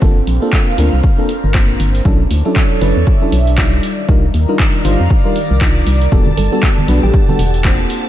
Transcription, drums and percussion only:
0, 0, Header, 1, 2, 480
1, 0, Start_track
1, 0, Tempo, 508475
1, 18, Time_signature, 4, 2, 24, 8
1, 7636, End_track
2, 0, Start_track
2, 0, Title_t, "Drums"
2, 18, Note_on_c, 9, 36, 114
2, 112, Note_off_c, 9, 36, 0
2, 258, Note_on_c, 9, 46, 98
2, 352, Note_off_c, 9, 46, 0
2, 498, Note_on_c, 9, 36, 97
2, 501, Note_on_c, 9, 39, 110
2, 592, Note_off_c, 9, 36, 0
2, 595, Note_off_c, 9, 39, 0
2, 738, Note_on_c, 9, 46, 97
2, 832, Note_off_c, 9, 46, 0
2, 978, Note_on_c, 9, 36, 111
2, 1072, Note_off_c, 9, 36, 0
2, 1218, Note_on_c, 9, 46, 101
2, 1312, Note_off_c, 9, 46, 0
2, 1457, Note_on_c, 9, 36, 100
2, 1461, Note_on_c, 9, 39, 110
2, 1552, Note_off_c, 9, 36, 0
2, 1555, Note_off_c, 9, 39, 0
2, 1698, Note_on_c, 9, 46, 98
2, 1792, Note_off_c, 9, 46, 0
2, 1839, Note_on_c, 9, 46, 55
2, 1933, Note_off_c, 9, 46, 0
2, 1937, Note_on_c, 9, 36, 110
2, 2032, Note_off_c, 9, 36, 0
2, 2177, Note_on_c, 9, 46, 97
2, 2272, Note_off_c, 9, 46, 0
2, 2417, Note_on_c, 9, 36, 99
2, 2420, Note_on_c, 9, 39, 110
2, 2512, Note_off_c, 9, 36, 0
2, 2515, Note_off_c, 9, 39, 0
2, 2657, Note_on_c, 9, 46, 98
2, 2752, Note_off_c, 9, 46, 0
2, 2897, Note_on_c, 9, 36, 109
2, 2992, Note_off_c, 9, 36, 0
2, 3138, Note_on_c, 9, 46, 100
2, 3232, Note_off_c, 9, 46, 0
2, 3278, Note_on_c, 9, 46, 56
2, 3372, Note_off_c, 9, 46, 0
2, 3377, Note_on_c, 9, 36, 98
2, 3381, Note_on_c, 9, 39, 114
2, 3472, Note_off_c, 9, 36, 0
2, 3475, Note_off_c, 9, 39, 0
2, 3618, Note_on_c, 9, 46, 96
2, 3712, Note_off_c, 9, 46, 0
2, 3857, Note_on_c, 9, 36, 111
2, 3952, Note_off_c, 9, 36, 0
2, 4098, Note_on_c, 9, 46, 92
2, 4192, Note_off_c, 9, 46, 0
2, 4337, Note_on_c, 9, 36, 101
2, 4341, Note_on_c, 9, 39, 118
2, 4432, Note_off_c, 9, 36, 0
2, 4435, Note_off_c, 9, 39, 0
2, 4578, Note_on_c, 9, 46, 97
2, 4672, Note_off_c, 9, 46, 0
2, 4817, Note_on_c, 9, 36, 106
2, 4912, Note_off_c, 9, 36, 0
2, 5058, Note_on_c, 9, 46, 99
2, 5152, Note_off_c, 9, 46, 0
2, 5297, Note_on_c, 9, 36, 101
2, 5301, Note_on_c, 9, 39, 120
2, 5392, Note_off_c, 9, 36, 0
2, 5395, Note_off_c, 9, 39, 0
2, 5537, Note_on_c, 9, 46, 95
2, 5632, Note_off_c, 9, 46, 0
2, 5678, Note_on_c, 9, 46, 52
2, 5773, Note_off_c, 9, 46, 0
2, 5777, Note_on_c, 9, 36, 115
2, 5872, Note_off_c, 9, 36, 0
2, 5914, Note_on_c, 9, 64, 73
2, 6008, Note_off_c, 9, 64, 0
2, 6017, Note_on_c, 9, 46, 101
2, 6029, Note_on_c, 9, 63, 79
2, 6112, Note_off_c, 9, 46, 0
2, 6123, Note_off_c, 9, 63, 0
2, 6257, Note_on_c, 9, 36, 100
2, 6260, Note_on_c, 9, 39, 117
2, 6352, Note_off_c, 9, 36, 0
2, 6355, Note_off_c, 9, 39, 0
2, 6401, Note_on_c, 9, 64, 80
2, 6496, Note_off_c, 9, 64, 0
2, 6497, Note_on_c, 9, 46, 100
2, 6592, Note_off_c, 9, 46, 0
2, 6641, Note_on_c, 9, 63, 68
2, 6735, Note_off_c, 9, 63, 0
2, 6737, Note_on_c, 9, 36, 116
2, 6832, Note_off_c, 9, 36, 0
2, 6875, Note_on_c, 9, 64, 86
2, 6970, Note_off_c, 9, 64, 0
2, 6978, Note_on_c, 9, 46, 105
2, 7072, Note_off_c, 9, 46, 0
2, 7118, Note_on_c, 9, 46, 59
2, 7213, Note_off_c, 9, 46, 0
2, 7217, Note_on_c, 9, 36, 107
2, 7220, Note_on_c, 9, 39, 120
2, 7312, Note_off_c, 9, 36, 0
2, 7315, Note_off_c, 9, 39, 0
2, 7457, Note_on_c, 9, 46, 100
2, 7552, Note_off_c, 9, 46, 0
2, 7636, End_track
0, 0, End_of_file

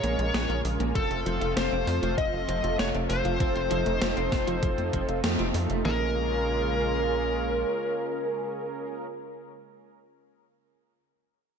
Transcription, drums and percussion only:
0, 0, Header, 1, 2, 480
1, 0, Start_track
1, 0, Key_signature, -5, "minor"
1, 0, Tempo, 612245
1, 749, Time_signature, 4, 2, 24, 8
1, 9082, End_track
2, 0, Start_track
2, 0, Title_t, "Drums"
2, 28, Note_on_c, 9, 42, 74
2, 106, Note_off_c, 9, 42, 0
2, 149, Note_on_c, 9, 42, 52
2, 228, Note_off_c, 9, 42, 0
2, 269, Note_on_c, 9, 38, 118
2, 269, Note_on_c, 9, 42, 77
2, 348, Note_off_c, 9, 38, 0
2, 348, Note_off_c, 9, 42, 0
2, 389, Note_on_c, 9, 42, 35
2, 467, Note_off_c, 9, 42, 0
2, 509, Note_on_c, 9, 46, 79
2, 587, Note_off_c, 9, 46, 0
2, 628, Note_on_c, 9, 42, 52
2, 706, Note_off_c, 9, 42, 0
2, 748, Note_on_c, 9, 36, 111
2, 748, Note_on_c, 9, 42, 81
2, 826, Note_off_c, 9, 42, 0
2, 827, Note_off_c, 9, 36, 0
2, 869, Note_on_c, 9, 42, 35
2, 947, Note_off_c, 9, 42, 0
2, 990, Note_on_c, 9, 42, 76
2, 1068, Note_off_c, 9, 42, 0
2, 1109, Note_on_c, 9, 42, 55
2, 1187, Note_off_c, 9, 42, 0
2, 1230, Note_on_c, 9, 38, 115
2, 1230, Note_on_c, 9, 42, 76
2, 1308, Note_off_c, 9, 38, 0
2, 1308, Note_off_c, 9, 42, 0
2, 1470, Note_on_c, 9, 46, 80
2, 1548, Note_off_c, 9, 46, 0
2, 1590, Note_on_c, 9, 42, 52
2, 1669, Note_off_c, 9, 42, 0
2, 1708, Note_on_c, 9, 36, 113
2, 1709, Note_on_c, 9, 42, 79
2, 1787, Note_off_c, 9, 36, 0
2, 1788, Note_off_c, 9, 42, 0
2, 1949, Note_on_c, 9, 42, 76
2, 2028, Note_off_c, 9, 42, 0
2, 2069, Note_on_c, 9, 42, 53
2, 2147, Note_off_c, 9, 42, 0
2, 2190, Note_on_c, 9, 38, 116
2, 2190, Note_on_c, 9, 42, 80
2, 2268, Note_off_c, 9, 38, 0
2, 2268, Note_off_c, 9, 42, 0
2, 2309, Note_on_c, 9, 42, 35
2, 2387, Note_off_c, 9, 42, 0
2, 2428, Note_on_c, 9, 46, 82
2, 2506, Note_off_c, 9, 46, 0
2, 2548, Note_on_c, 9, 42, 53
2, 2626, Note_off_c, 9, 42, 0
2, 2668, Note_on_c, 9, 36, 117
2, 2668, Note_on_c, 9, 42, 82
2, 2746, Note_off_c, 9, 42, 0
2, 2747, Note_off_c, 9, 36, 0
2, 2788, Note_on_c, 9, 42, 37
2, 2866, Note_off_c, 9, 42, 0
2, 2907, Note_on_c, 9, 42, 81
2, 2985, Note_off_c, 9, 42, 0
2, 3027, Note_on_c, 9, 42, 57
2, 3105, Note_off_c, 9, 42, 0
2, 3148, Note_on_c, 9, 38, 114
2, 3148, Note_on_c, 9, 42, 82
2, 3227, Note_off_c, 9, 38, 0
2, 3227, Note_off_c, 9, 42, 0
2, 3268, Note_on_c, 9, 42, 38
2, 3347, Note_off_c, 9, 42, 0
2, 3388, Note_on_c, 9, 36, 102
2, 3388, Note_on_c, 9, 38, 62
2, 3388, Note_on_c, 9, 46, 85
2, 3467, Note_off_c, 9, 36, 0
2, 3467, Note_off_c, 9, 38, 0
2, 3467, Note_off_c, 9, 46, 0
2, 3508, Note_on_c, 9, 42, 55
2, 3586, Note_off_c, 9, 42, 0
2, 3627, Note_on_c, 9, 42, 84
2, 3628, Note_on_c, 9, 36, 116
2, 3706, Note_off_c, 9, 36, 0
2, 3706, Note_off_c, 9, 42, 0
2, 3748, Note_on_c, 9, 42, 38
2, 3827, Note_off_c, 9, 42, 0
2, 3868, Note_on_c, 9, 36, 59
2, 3868, Note_on_c, 9, 42, 81
2, 3946, Note_off_c, 9, 36, 0
2, 3946, Note_off_c, 9, 42, 0
2, 3987, Note_on_c, 9, 42, 56
2, 4066, Note_off_c, 9, 42, 0
2, 4107, Note_on_c, 9, 38, 119
2, 4107, Note_on_c, 9, 42, 81
2, 4185, Note_off_c, 9, 38, 0
2, 4185, Note_off_c, 9, 42, 0
2, 4227, Note_on_c, 9, 42, 38
2, 4305, Note_off_c, 9, 42, 0
2, 4346, Note_on_c, 9, 46, 84
2, 4424, Note_off_c, 9, 46, 0
2, 4466, Note_on_c, 9, 42, 56
2, 4545, Note_off_c, 9, 42, 0
2, 4588, Note_on_c, 9, 38, 108
2, 4666, Note_off_c, 9, 38, 0
2, 9082, End_track
0, 0, End_of_file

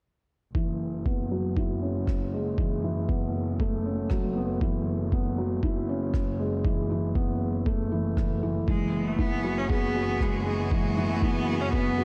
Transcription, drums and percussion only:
0, 0, Header, 1, 2, 480
1, 0, Start_track
1, 0, Key_signature, 3, "minor"
1, 0, Tempo, 508475
1, 518, Time_signature, 4, 2, 24, 8
1, 11366, End_track
2, 0, Start_track
2, 0, Title_t, "Drums"
2, 518, Note_on_c, 9, 36, 91
2, 612, Note_off_c, 9, 36, 0
2, 998, Note_on_c, 9, 36, 86
2, 1092, Note_off_c, 9, 36, 0
2, 1478, Note_on_c, 9, 36, 85
2, 1572, Note_off_c, 9, 36, 0
2, 1958, Note_on_c, 9, 36, 93
2, 1959, Note_on_c, 9, 37, 61
2, 2052, Note_off_c, 9, 36, 0
2, 2054, Note_off_c, 9, 37, 0
2, 2436, Note_on_c, 9, 36, 96
2, 2530, Note_off_c, 9, 36, 0
2, 2916, Note_on_c, 9, 36, 96
2, 3010, Note_off_c, 9, 36, 0
2, 3396, Note_on_c, 9, 36, 93
2, 3490, Note_off_c, 9, 36, 0
2, 3868, Note_on_c, 9, 37, 64
2, 3876, Note_on_c, 9, 36, 94
2, 3962, Note_off_c, 9, 37, 0
2, 3970, Note_off_c, 9, 36, 0
2, 4355, Note_on_c, 9, 36, 97
2, 4449, Note_off_c, 9, 36, 0
2, 4835, Note_on_c, 9, 36, 103
2, 4929, Note_off_c, 9, 36, 0
2, 5314, Note_on_c, 9, 36, 89
2, 5408, Note_off_c, 9, 36, 0
2, 5793, Note_on_c, 9, 37, 59
2, 5794, Note_on_c, 9, 36, 92
2, 5888, Note_off_c, 9, 36, 0
2, 5888, Note_off_c, 9, 37, 0
2, 6274, Note_on_c, 9, 36, 98
2, 6368, Note_off_c, 9, 36, 0
2, 6753, Note_on_c, 9, 36, 103
2, 6847, Note_off_c, 9, 36, 0
2, 7232, Note_on_c, 9, 36, 99
2, 7327, Note_off_c, 9, 36, 0
2, 7713, Note_on_c, 9, 36, 95
2, 7714, Note_on_c, 9, 37, 56
2, 7807, Note_off_c, 9, 36, 0
2, 7809, Note_off_c, 9, 37, 0
2, 8192, Note_on_c, 9, 36, 92
2, 8286, Note_off_c, 9, 36, 0
2, 8673, Note_on_c, 9, 36, 92
2, 8767, Note_off_c, 9, 36, 0
2, 9153, Note_on_c, 9, 36, 96
2, 9248, Note_off_c, 9, 36, 0
2, 9633, Note_on_c, 9, 36, 93
2, 9636, Note_on_c, 9, 37, 57
2, 9728, Note_off_c, 9, 36, 0
2, 9730, Note_off_c, 9, 37, 0
2, 10114, Note_on_c, 9, 36, 94
2, 10209, Note_off_c, 9, 36, 0
2, 10594, Note_on_c, 9, 36, 98
2, 10688, Note_off_c, 9, 36, 0
2, 11074, Note_on_c, 9, 36, 92
2, 11169, Note_off_c, 9, 36, 0
2, 11366, End_track
0, 0, End_of_file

